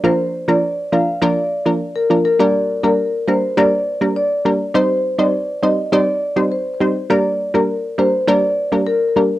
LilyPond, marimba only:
\new Staff \with { instrumentName = "Marimba" } { \time 4/4 \key g \minor \tempo 4 = 102 c''16 r8 d''16 r8 f''16 r16 d''8. r8 bes'16 r16 bes'16 | d''16 r8 bes'16 r8 c''16 r16 d''8. r16 d''8. r16 | c''16 r8 d''16 r8 ees''16 r16 d''8. r16 c''8. r16 | d''16 r8 bes'16 r8 c''16 r16 d''8. r16 bes'8. r16 | }